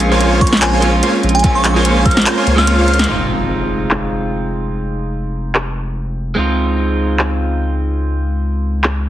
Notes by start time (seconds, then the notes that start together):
Already playing: A#1
0.00 closed hi-hat
0.10 G#3 A#3 C4 C#4 F4 C5 C#5 G#5
0.14 F4
0.21 closed hi-hat
0.41 A#3 F4 C5 C#5 A#5 C#6, kick, closed hi-hat
0.47 closed hi-hat
0.53 snare, closed hi-hat
0.57 closed hi-hat
0.62 A#1 G#5, clap, closed hi-hat
0.73 A#3 F4 C5 C#5 G#5
0.80 G#3 C4 C#4, closed hi-hat
0.84 F4
1.03 A#3 F4 C5 C#5 G#5, closed hi-hat
1.23 A#1, closed hi-hat
1.29 closed hi-hat
1.35 G#5, closed hi-hat
1.39 G#3, closed hi-hat
1.44 A#1 A#3 C4 C#4 F4 C5 C#5 G#5, kick, closed hi-hat
1.55 C#6
1.64 clap, closed hi-hat
1.74 G#3 A#3 C4 C#4 F4 C5 C#5 G#5
1.85 closed hi-hat
2.06 A#3 F4 C5 C#5 A#5 F6, kick, closed hi-hat
2.11 closed hi-hat
2.17 snare, closed hi-hat
2.22 closed hi-hat
2.26 clap, closed hi-hat
2.38 A#3 F4 C5 C#5 G#5
2.47 C#2, closed hi-hat
2.56 G#3 C4 C#4 F6, snare
2.60 F4
2.67 A#3 F4 C5 C#5 F5, closed hi-hat
2.79 A#3 F4 C5 C#5 F5
2.88 closed hi-hat
2.94 closed hi-hat
2.99 snare, closed hi-hat
3.04 G#3 C4, closed hi-hat
3.08 F1 D#4 F4, crash, impact
3.91 clap
5.55 clap
6.35 C#2 G#3 C4 D#4
6.39 F4
7.19 clap
8.84 clap